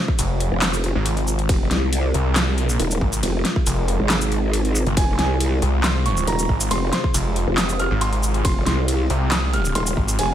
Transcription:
Already playing: C3 G#3 F4 C5
0.08 kick
0.19 F1, closed hi-hat, ride, shaker
0.40 closed hi-hat
0.52 F1
0.62 snare, clap, closed hi-hat, ride, shaker
0.73 shaker
0.84 closed hi-hat
0.95 G#1
1.06 closed hi-hat, ride
1.17 closed hi-hat
1.27 shaker
1.39 closed hi-hat
1.49 F1 A#4, kick, closed hi-hat, ride
1.71 C2, snare, closed hi-hat
1.93 closed hi-hat, ride
2.14 C2, closed hi-hat
2.36 snare, clap, closed hi-hat, ride, shaker
2.58 B1, closed hi-hat
2.69 shaker
2.80 D#1, closed hi-hat, ride
2.91 closed hi-hat, shaker
3.01 G#1, kick
3.13 closed hi-hat, shaker
3.23 F1, closed hi-hat, ride
3.45 snare, closed hi-hat
3.56 kick
3.67 F1, closed hi-hat, ride, shaker
3.88 closed hi-hat
4.00 G#1
4.10 snare, clap, closed hi-hat, ride, shaker
4.21 shaker
4.32 closed hi-hat
4.53 closed hi-hat, ride
4.65 closed hi-hat
4.75 shaker
4.87 G1, closed hi-hat
4.97 F1 C5 G#5, kick, closed hi-hat, ride
5.19 C2 G#5, snare, closed hi-hat
5.40 closed hi-hat, ride
5.62 C2, closed hi-hat
5.84 C6, snare, clap, closed hi-hat, ride, shaker
6.06 C#6, closed hi-hat
6.17 shaker
6.27 D#1 A#5, closed hi-hat, ride
6.39 closed hi-hat, shaker
6.49 G#1, kick
6.61 closed hi-hat, shaker
6.71 F1 C6, closed hi-hat, ride
6.93 C6, snare, closed hi-hat
7.04 kick
7.14 F1, closed hi-hat, ride, shaker
7.36 closed hi-hat
7.47 F1
7.58 D#6, snare, clap, closed hi-hat, ride, shaker
7.69 shaker
7.79 F6, closed hi-hat
7.91 G#1
8.01 C6, closed hi-hat, ride
8.13 closed hi-hat
8.23 shaker
8.34 closed hi-hat
8.45 F1 G4 C6, kick, closed hi-hat, ride
8.66 C2 C6, snare, closed hi-hat
8.88 closed hi-hat, ride
9.10 C2, closed hi-hat
9.32 D#6, snare, clap, closed hi-hat, ride, shaker
9.53 F6, closed hi-hat
9.65 shaker
9.75 D#1 C6, closed hi-hat, ride
9.87 closed hi-hat, shaker
9.97 G#1, kick
10.08 closed hi-hat, shaker
10.19 F1 G#5, closed hi-hat, ride

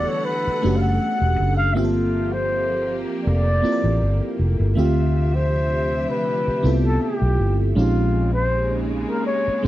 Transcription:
Already playing: D3 E3 G3 A3 B3 D4 F#4 G4 A4 F#5
0.08 C#5
0.25 B4
0.47 muted fingered electric bass stroke
0.62 F#1 A3 C#4 D4 F#4 G4
0.76 F5
0.81 F#5
1.21 E1
1.40 F#1
1.57 F5
1.74 G1 F3 A#3 C4 F4 G4 E5
1.84 A4
2.32 C5
3.24 F1 D5
3.62 A#3 C4 E4 F4 A4
3.72 A#4
3.84 A1
4.02 G1
4.39 F1
4.60 G1
4.75 D2 C3 D3 F3 A3 C4 F4 G4 E5
5.35 C5
6.10 B4
6.48 muted fingered electric bass stroke
6.63 C2 B3 C4 E4 F4 A4
6.85 A4
7.02 G4
7.22 B1
7.39 G1
7.75 A#1 C#3 G#3 A#3 C4 C#4 D#4 F4 G4
8.34 C5
9.09 A#4
9.27 C#5
9.48 muted fingered electric bass stroke
9.62 G#3 C4 C#4 C5

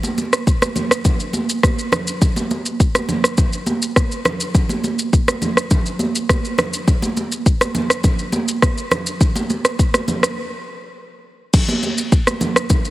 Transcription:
0.03 high conga, shaker
0.18 high conga, shaker
0.33 cross-stick, shaker
0.47 kick, shaker
0.62 cross-stick, high conga, shaker
0.76 high conga, low conga, shaker
0.91 cross-stick, shaker
1.05 kick, low conga, shaker
1.20 shaker
1.33 high conga, shaker
1.49 shaker
1.63 kick, cross-stick, high conga, shaker
1.79 shaker
1.92 cross-stick, low conga, shaker
2.07 shaker
2.22 kick, low conga, shaker
2.36 high conga, shaker
2.51 high conga, shaker
2.66 shaker
2.80 kick, shaker
2.95 cross-stick, high conga, shaker
3.09 high conga, low conga, shaker
3.24 cross-stick, shaker
3.37 kick, low conga, shaker
3.53 shaker
3.66 high conga, shaker
3.82 shaker
3.96 kick, cross-stick, high conga, shaker
4.12 shaker
4.25 cross-stick, low conga, shaker
4.41 shaker
4.55 kick, low conga, shaker
4.69 high conga, shaker
4.84 high conga, shaker
4.99 shaker
5.13 kick, shaker
5.28 cross-stick, high conga, shaker
5.42 high conga, low conga, shaker
5.57 cross-stick, shaker
5.71 kick, low conga, shaker
5.86 shaker
5.99 high conga, shaker
6.15 shaker
6.29 kick, cross-stick, high conga, shaker
6.45 shaker
6.58 cross-stick, low conga, shaker
6.73 shaker
6.88 kick, low conga, shaker
7.02 high conga, shaker
7.17 high conga, shaker
7.32 shaker
7.46 kick, shaker
7.61 cross-stick, high conga, shaker
7.75 high conga, low conga, shaker
7.90 cross-stick, shaker
8.04 kick, low conga, shaker
8.19 shaker
8.32 high conga, shaker
8.48 shaker
8.62 kick, cross-stick, high conga, shaker
8.78 shaker
8.91 cross-stick, low conga, shaker
9.07 shaker
9.21 kick, low conga, shaker
9.36 high conga, shaker
9.50 high conga, shaker
9.65 cross-stick, shaker
9.79 kick, shaker
9.94 cross-stick, high conga, shaker
10.08 high conga, low conga, shaker
10.23 cross-stick, shaker
11.54 kick, crash, low conga, shaker
11.68 high conga, shaker
11.83 high conga, shaker
11.98 shaker
12.12 kick, shaker
12.27 cross-stick, high conga, shaker
12.41 high conga, low conga, shaker
12.56 cross-stick, shaker
12.70 kick, low conga, shaker
12.85 shaker

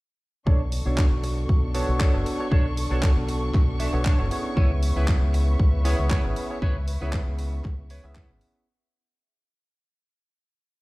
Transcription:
0.46 B1 D4 A4 C#5 C#6, kick
0.72 muted clean electric guitar stroke, open hi-hat
0.85 B1 B3 D4 F#4 A4 C#5 C#6
0.98 kick, clap
1.12 B1
1.23 muted clean electric guitar stroke, open hi-hat
1.37 muted clean electric guitar stroke
1.49 B1, kick
1.74 B3 D4 F#4 A4 C#5, open hi-hat
1.89 B1
2.00 D4 A4 C#5, kick, clap
2.13 F#1 B3 D4 F#4 A4 C#5
2.26 muted clean electric guitar stroke, open hi-hat
2.39 B3 D4 F#4 A4 C#5, muted clean electric guitar stroke
2.51 B1 D4 A4 C#5, kick
2.77 muted clean electric guitar stroke, open hi-hat
2.90 B1 B3 D4 F#4 A4 C#5
3.03 kick, clap
3.17 B1
3.28 muted clean electric guitar stroke, open hi-hat
3.42 muted clean electric guitar stroke
3.54 B1, kick, clap
3.79 D4 A4 E5, open hi-hat
3.93 B1 B3 D4 F#4 A4 C#5
4.05 D4 A4 C#5, kick, clap
4.19 F#1 B3 D4 F#4 A4 C#5
4.30 B3 C#4 E4 G#4 C#5, muted clean electric guitar stroke, open hi-hat
4.45 muted clean electric guitar stroke
4.56 C#2 E4 B4 C#5 E5, kick
4.83 muted clean electric guitar stroke, open hi-hat
4.96 C#2 B3 C#4 E4 G#4 B4 C#5 E5
5.08 kick, clap
5.22 C#2
5.34 muted clean electric guitar stroke, open hi-hat
5.48 muted clean electric guitar stroke
5.59 C#2, kick
5.84 B3 C#4 E4 G#4 B4 C#5, open hi-hat
5.99 C#2
6.10 E4 B4 C#5, kick, clap
6.24 G#1 B3 C#4 E4 G#4 C#5
6.36 muted clean electric guitar stroke, open hi-hat
6.50 B3 C#4 E4 G#4 C#5, muted clean electric guitar stroke
6.62 C#2 E4 B4 C#5, kick
6.88 muted clean electric guitar stroke, open hi-hat
7.01 C#2 B3 C#4 E4 G#4 B4 C#5 E5
7.13 kick, clap
7.27 C#2
7.39 muted clean electric guitar stroke, open hi-hat
7.53 muted clean electric guitar stroke
7.64 C#2, kick, clap
7.90 E4 B4 C#5, open hi-hat
8.04 C#2 B3 C#4 E4 G#4 E5
8.15 E4 B4 C#5, kick, clap
8.30 G#1
8.41 muted clean electric guitar stroke, open hi-hat
8.56 muted clean electric guitar stroke

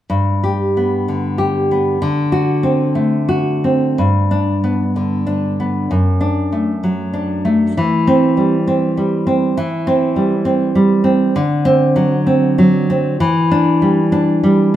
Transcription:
0.10 G2
0.43 G4
0.77 B3
1.08 D3
1.38 G4
1.71 B3
2.02 D3
2.32 F#4
2.63 C4
2.95 A3
3.29 F#4
3.64 C4
3.98 G2
4.31 D4
4.64 B3
4.96 D3
5.27 D4
5.60 B3
5.91 F#2
6.21 D4
6.52 A3
6.83 F#3
7.13 D4
7.45 A3
7.77 E3
8.07 C4
8.37 G3
8.67 C4
8.97 G3
9.27 C4
9.57 E3
9.87 C4
10.16 G3
10.45 C4
10.75 G3
11.04 C4
11.36 D3
11.65 C4
11.96 F#3
12.27 C4
12.58 F#3
12.90 C4
13.20 E3
13.51 D4
13.82 G3
14.12 D4
14.43 G3

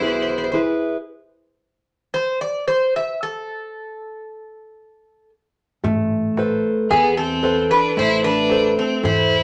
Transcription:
Already playing: B1 B2 E4
0.01 E4 G#4 B4
0.07 C5
0.12 C5
0.22 C5
0.29 C5
0.38 C5
0.44 C5
0.52 E4 G#4 B4 C5
2.14 C5
2.41 D5
2.68 C5
2.96 E5
3.23 A4
5.84 A1 A3, darbuka dum
6.37 A4 B4 C5, darbuka tek
6.90 E2 E3 B3 G#4, darbuka tek
7.17 C4 A4
7.43 A4 B4 C5, darbuka tek
7.70 D4 B4
7.97 A1 A3 E4 C5, darbuka tek
8.22 D4 B4, darbuka tek
8.49 A4 C5, darbuka tek
8.77 C4 A4, darbuka tek
9.03 E2 E3 E4 C5, darbuka dum
9.30 darbuka tek

